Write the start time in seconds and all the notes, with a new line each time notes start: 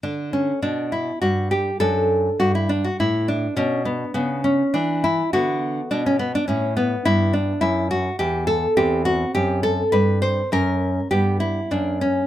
0.03 D3 D4
0.33 C#4
0.62 B2 D4
0.92 E4
1.22 G2 F#4
1.51 G4
1.80 F#2 D4 A4
2.40 G2 F#4
2.55 E4
2.69 D4
2.84 F#4
3.00 A2 E4
3.28 D4
3.56 B2 C#4 D4
3.85 B3
4.14 C#3 B3
4.44 C#4
4.74 E3 D4
5.04 E4
5.33 D3 B3 F#4
5.91 B2 D4
6.06 C#4
6.19 B3
6.35 D4
6.48 A2 C#4
6.77 B3
7.05 G2 B3 E4
7.33 D4
7.61 F#2 E4
7.91 F#4
8.19 E2 G4
8.47 A4
8.77 E2 C4 G4
9.05 F#4
9.35 F#2 G4
9.63 A4
9.92 G2 B4
10.22 C5
10.52 F#2 C#4 A#4
11.11 G2 B3 G4
11.40 E4
11.71 F#2 A#3 D4
12.01 C#4